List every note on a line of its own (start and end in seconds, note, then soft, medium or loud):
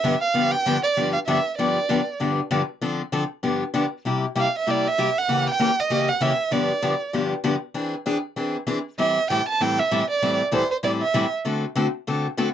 0.00 0.14 G2 medium
0.00 0.14 D3 medium
0.00 0.20 E5 medium
0.04 0.14 F3 medium
0.04 0.14 B3 medium
0.04 0.14 D4 medium
0.04 0.14 G4 medium
0.21 0.53 F5 medium
0.34 0.53 G2 medium
0.34 0.53 D3 medium
0.34 0.53 F3 medium
0.34 0.54 B3 medium
0.34 0.54 D4 medium
0.34 0.54 G4 medium
0.51 0.83 G5 medium
0.66 0.76 G2 medium
0.66 0.76 D3 medium
0.66 0.76 F3 medium
0.66 0.76 B3 medium
0.66 0.77 D4 medium
0.66 0.76 G4 medium
0.83 1.12 D5 medium
0.97 1.16 G2 medium
0.97 1.16 D3 medium
0.97 1.16 F3 medium
0.97 1.16 B3 medium
0.97 1.16 D4 medium
0.97 1.16 G4 medium
1.13 1.19 F5 medium
1.27 1.38 G2 medium
1.27 1.38 D3 medium
1.27 1.38 F3 medium
1.27 1.38 B3 medium
1.27 1.38 D4 medium
1.27 1.38 G4 medium
1.27 1.56 E5 medium
1.58 1.77 G2 medium
1.58 1.78 D3 medium
1.58 1.78 F3 medium
1.58 1.78 B3 medium
1.58 1.78 D4 medium
1.58 1.78 G4 medium
1.58 2.16 D5 medium
1.89 1.99 G2 medium
1.89 1.99 D3 medium
1.89 1.99 F3 medium
1.89 2.00 B3 medium
1.89 2.00 D4 medium
1.89 2.00 G4 medium
2.20 2.39 G2 medium
2.20 2.39 D3 medium
2.20 2.39 F3 medium
2.20 2.39 B3 medium
2.20 2.39 D4 medium
2.20 2.39 G4 medium
2.51 2.61 G2 medium
2.51 2.61 D3 medium
2.51 2.61 F3 medium
2.51 2.61 B3 medium
2.51 2.61 D4 medium
2.51 2.62 G4 medium
2.81 3.01 D3 medium
2.81 3.01 F3 medium
2.81 3.01 C4 medium
2.81 3.01 D4 medium
2.81 3.01 A4 medium
3.12 3.23 D3 medium
3.12 3.23 F3 medium
3.12 3.23 C4 medium
3.12 3.23 D4 medium
3.12 3.23 A4 medium
3.43 3.62 G2 medium
3.43 3.62 D3 medium
3.43 3.62 F3 medium
3.43 3.63 B3 medium
3.43 3.63 D4 medium
3.43 3.63 G4 medium
3.74 3.84 G2 medium
3.74 3.84 D3 medium
3.74 3.84 F3 medium
3.74 3.85 B3 medium
3.74 3.85 D4 medium
3.74 3.85 G4 medium
4.05 4.24 C3 medium
4.05 4.25 G3 medium
4.05 4.25 A#3 medium
4.05 4.25 E4 medium
4.05 4.25 G4 medium
4.35 4.46 C3 medium
4.35 4.46 G3 medium
4.35 4.46 A#3 medium
4.35 4.47 E4 medium
4.35 4.47 G4 medium
4.40 4.55 F5 medium
4.58 4.72 E5 medium
4.67 4.86 C3 medium
4.67 4.86 G3 medium
4.67 4.86 A#3 medium
4.67 4.86 E4 medium
4.67 4.86 G4 medium
4.67 4.89 D5 medium
4.88 5.20 E5 medium
4.98 5.08 C3 medium
4.98 5.08 G3 medium
4.98 5.09 A#3 medium
4.98 5.09 E4 medium
4.98 5.09 G4 medium
5.18 5.48 F#5 medium
5.28 5.48 C#3 medium
5.28 5.48 E3 medium
5.28 5.48 A#3 medium
5.28 5.48 C#4 medium
5.28 5.48 G4 medium
5.50 5.81 G5 loud
5.59 5.70 C#3 medium
5.59 5.70 E3 medium
5.59 5.70 A#3 medium
5.59 5.70 C#4 medium
5.59 5.70 G4 medium
5.80 6.10 D#5 medium
5.90 6.09 C#3 medium
5.90 6.09 E3 medium
5.90 6.09 A#3 medium
5.90 6.10 C#4 medium
5.90 6.10 G4 medium
6.09 6.24 F#5 medium
6.21 6.31 C#3 medium
6.21 6.31 E3 medium
6.21 6.32 A#3 medium
6.21 6.32 C#4 medium
6.21 6.32 G4 medium
6.21 6.54 E5 medium
6.51 6.71 G2 medium
6.51 6.71 D3 medium
6.51 6.71 F3 medium
6.51 6.71 B3 medium
6.51 6.71 D4 medium
6.51 6.71 G4 medium
6.51 7.14 D5 medium
6.82 6.93 G2 medium
6.82 6.93 D3 medium
6.82 6.93 F3 medium
6.82 6.93 B3 medium
6.82 6.93 D4 medium
6.82 6.93 G4 medium
7.13 7.33 G2 medium
7.13 7.33 D3 medium
7.13 7.33 F3 medium
7.13 7.33 B3 medium
7.13 7.33 D4 medium
7.13 7.33 G4 medium
7.44 7.54 G2 medium
7.44 7.54 D3 medium
7.44 7.55 F3 medium
7.44 7.55 B3 medium
7.44 7.55 D4 medium
7.44 7.55 G4 medium
7.74 7.94 E3 medium
7.74 7.94 C4 medium
7.74 7.94 D4 medium
7.74 7.94 G#4 medium
8.06 8.16 E3 medium
8.06 8.16 C4 medium
8.06 8.17 D4 medium
8.06 8.17 G#4 medium
8.36 8.56 E3 medium
8.36 8.56 C4 medium
8.36 8.56 D4 medium
8.36 8.56 G#4 medium
8.67 8.78 E3 medium
8.67 8.78 C4 medium
8.67 8.78 D4 medium
8.67 8.78 G#4 medium
8.98 9.18 A2 medium
8.98 9.18 E3 medium
8.98 9.18 G3 medium
8.98 9.18 C4 medium
8.98 9.18 E4 medium
8.98 9.18 A4 medium
8.98 9.28 E5 medium
9.30 9.40 A2 medium
9.30 9.40 E3 medium
9.30 9.40 G3 medium
9.30 9.40 C4 medium
9.30 9.41 E4 medium
9.30 9.41 A4 medium
9.30 9.47 G5 medium
9.49 9.63 A5 medium
9.60 9.79 A2 medium
9.60 9.79 E3 medium
9.60 9.80 G3 medium
9.60 9.80 C4 medium
9.60 9.80 E4 medium
9.60 9.80 A4 medium
9.60 9.81 G5 medium
9.79 10.09 E5 medium
9.91 10.02 A2 medium
9.91 10.02 E3 medium
9.91 10.02 G3 medium
9.91 10.02 C4 medium
9.91 10.02 E4 medium
9.91 10.02 A4 medium
10.11 10.38 D5 medium
10.22 10.41 A2 medium
10.22 10.41 E3 medium
10.22 10.41 G3 medium
10.22 10.41 C4 medium
10.22 10.41 E4 medium
10.22 10.42 A4 medium
10.52 10.62 A2 medium
10.52 10.63 E3 medium
10.52 10.63 G3 medium
10.52 10.63 C4 medium
10.52 10.63 E4 medium
10.52 10.63 A4 medium
10.52 10.70 C5 medium
10.71 10.77 C5 medium
10.83 11.02 A2 medium
10.83 11.02 E3 medium
10.83 11.02 G3 medium
10.83 11.02 C4 medium
10.83 11.03 E4 medium
10.83 11.03 A4 medium
10.83 10.91 D5 medium
11.02 11.30 E5 medium
11.14 11.24 A2 medium
11.14 11.25 E3 medium
11.14 11.25 G3 medium
11.14 11.25 C4 medium
11.14 11.25 E4 medium
11.14 11.25 A4 medium
11.45 11.64 D3 medium
11.45 11.64 A3 medium
11.45 11.64 C4 medium
11.45 11.64 F#4 medium
11.45 11.64 A4 medium
11.76 11.86 D3 medium
11.76 11.86 A3 medium
11.76 11.86 C4 medium
11.76 11.87 F#4 medium
11.76 11.87 A4 medium
12.07 12.26 D3 medium
12.07 12.26 A3 medium
12.07 12.26 C4 medium
12.07 12.26 F#4 medium
12.07 12.26 A4 medium
12.37 12.48 D3 medium
12.37 12.48 A3 medium
12.37 12.48 C4 medium
12.37 12.48 F#4 medium
12.37 12.48 A4 medium